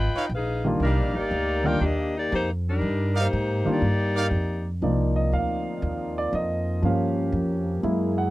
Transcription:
Already playing: G#1 F4 B4 D#5 G5
0.15 D#4 B4 C#5 F5, muted upright bass stroke
0.29 A#1 F5
0.34 D#4 G#4 B4
0.65 D#3 G3 A#3 D4 F4
0.80 C2 G3 D4 D#4 A#4 D5 F5
0.97 A#1
1.14 G1 A#3 D#4 G4 D5
1.31 D2
1.64 D#3 G3 A#3 D4 D#4 F4 A#4 D5 G5
1.81 D#2 A#3 D4 G4 D#5
2.17 A#3 D#4 G4 D5
2.32 F2 A#3 D#4 G4 C5
2.68 G3 D4 D#4 A#4
2.81 G2
3.14 D#4 A#4 D5 F5
3.19 A#3 D#4 G4 C5
3.33 G#2
3.65 D#3 G3 A#3 D4 F4, muted upright bass stroke
3.69 A#3 D#4 G4 D5
3.82 G2
4.15 D#4 A#4 D5 F5
4.31 F2
4.81 C2 F3 A#3 C4 D#4 F4 D5
5.16 D#5
5.32 D2 F5
5.82 D#2
6.18 D5
6.33 F2 D#5
6.82 G2 F3 A#3 C#4 G4 F5
7.32 F2
7.83 F#2 F#3 G#3 A#3 E4 G#4
8.18 F#5

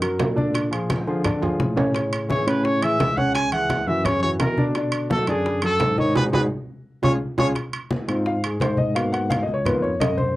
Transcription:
Already playing: F#2
0.02 F#3 F#4 A#4, high conga, high timbale
0.20 A#2, high bongo, low bongo, high conga, high timbale, low timbale
0.36 D3 D4 D5, high conga
0.55 high bongo, high conga, high timbale
0.71 F3 F4 G#4, high conga, high timbale
0.90 high bongo, high conga, high timbale, low timbale
1.07 D3 F3 F4 G#4, high bongo, high conga
1.24 D3 D4 D5, high bongo, high conga, low conga, high timbale
1.42 F3 F4 G#4, high bongo, high conga, low conga, high timbale
1.60 A2, high bongo, low bongo, high conga
1.76 C#3 C#4 C#5, high bongo, high conga, low timbale
1.95 C#3 C#4 C#5, high bongo, high conga, high timbale
2.13 high conga, high timbale
2.29 E3 E4 G#4 C#5, high bongo, high conga, low timbale
2.47 A2 C#3 C#4 B4 C#5, high timbale
2.65 C#5, high bongo, high conga
2.82 E3 E4 G#4 E5, high conga, high timbale
2.99 C#2, high bongo, low bongo, high conga, high timbale, low timbale
3.17 C#3 C#4 C#5 F#5, high conga
3.35 G#5, high bongo, high conga, high timbale
3.52 E3 E4 G#4 F#5, high conga, high timbale
3.70 high bongo, high conga, high timbale, low timbale
3.87 F#2 E3 E4 F#4 E5, high bongo, high conga
4.05 C#3 C#4 C#5, high bongo, high conga, low conga, high timbale
4.23 E3 E4 F#4 C#5, high bongo, high conga
4.40 B2 A#4, high bongo, low bongo, high conga, high timbale, low timbale
4.58 D3 D4 D5, high bongo, high conga
4.75 D3 D4 D5, high bongo, high conga, high timbale
4.92 high conga, high timbale
5.10 F#3 F#4 A4, high bongo, high conga, low timbale
5.27 F#2 D3 D4 G#4 D5, high timbale
5.46 high bongo, high conga
5.62 F#3 F#4 A4, high conga, high timbale
5.80 G#2, high bongo, low bongo, high conga, high timbale, low timbale
5.98 D#3 D#4 C#5 D#5, high conga
6.14 G#2 D#4 F#4 G#4 B4, high bongo, high conga, high timbale
6.32 G#2 D#4 F#4 G#4 B4, high bongo, high conga, high timbale
7.02 C#2 C#4 F4 G#4 C#5, high bongo, high conga, high timbale
7.37 C#2 C#4 F4 G#4 C#5, high bongo, high conga, high timbale
7.55 high bongo, high conga, high timbale
7.73 high conga, high timbale
7.90 high bongo, high conga, low timbale
8.08 G#2 C4 D#4 F4, high timbale
8.26 F5, high bongo, high conga
8.42 G#4, high conga, high timbale
8.60 G#2 C5, high bongo, low bongo, high conga, high timbale, low timbale
8.77 D#5, high conga
8.94 A#3 B3 F#4 F5, high bongo, high conga, high timbale
9.12 F#5, high conga, high timbale
9.30 F5, high bongo, high conga, high timbale, low timbale
9.43 D#5
9.48 C#2, high bongo, high conga
9.54 C#5
9.65 A#3 B3 D#4 F4 B4, high bongo, high conga, low conga, high timbale
9.82 F2 C#5, high bongo, high conga
10.00 F#2 D#5, high bongo, low bongo, high conga, high timbale, low timbale
10.17 C5, high bongo, high conga

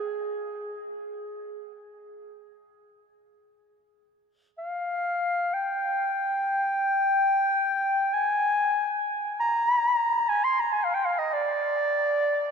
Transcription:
Already playing: G#4
4.58 F5
5.54 G5
8.13 G#5
9.40 A#5
10.29 G#5
10.44 C6
10.60 A#5
10.72 G#5
10.84 F5
10.94 G5
11.05 F5
11.19 D#5
11.33 D5

